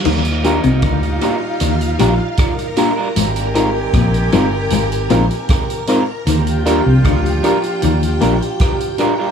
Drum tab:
CC |x---------------|----------------|----------------|
HH |-xxxxxx-xxx-xxx-|xxx-xxx-xxxxxxx-|xxx-xxxxxxxxxxx-|
SD |----r-------r---|----r-------r---|----r-------r---|
BD |----o-------o---|----o-------o---|----o-------o---|